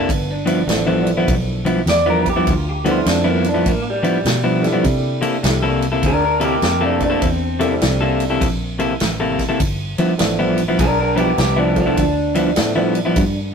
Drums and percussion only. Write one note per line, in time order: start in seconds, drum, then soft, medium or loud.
0.09 kick loud
0.09 ride medium
0.47 ride medium
0.69 snare loud
0.69 ride medium
1.07 ride medium
1.28 kick loud
1.28 ride medium
1.66 ride medium
1.87 snare medium
1.87 ride medium
2.26 kick medium
2.26 ride medium
2.47 kick loud
2.47 ride medium
2.86 ride medium
3.06 snare loud
3.06 ride medium
3.44 ride medium
3.66 kick loud
3.66 ride medium
4.04 ride medium
4.25 snare loud
4.25 ride medium
4.64 snare soft
4.64 ride medium
4.84 kick loud
4.84 ride medium
5.22 ride medium
5.44 snare loud
5.44 ride medium
5.82 ride medium
6.03 kick loud
6.03 ride medium
6.41 ride medium
6.62 snare loud
6.62 ride medium
7.00 kick medium
7.00 ride medium
7.22 kick loud
7.22 ride medium
7.61 ride medium
7.82 snare loud
7.82 ride medium
8.20 ride medium
8.41 kick loud
8.41 ride medium
8.80 ride medium
9.00 snare loud
9.00 ride medium
9.39 kick medium
9.39 snare soft
9.39 ride medium
9.60 kick loud
9.60 ride medium
9.98 ride medium
10.19 snare loud
10.19 ride medium
10.58 ride medium
10.79 kick loud
10.79 ride medium
11.17 ride medium
11.38 snare loud
11.38 ride medium
11.76 kick medium
11.76 ride medium
11.97 kick loud
11.97 ride medium
12.35 ride medium
12.56 snare loud
12.56 ride medium
12.95 ride medium
13.16 kick loud
13.16 ride medium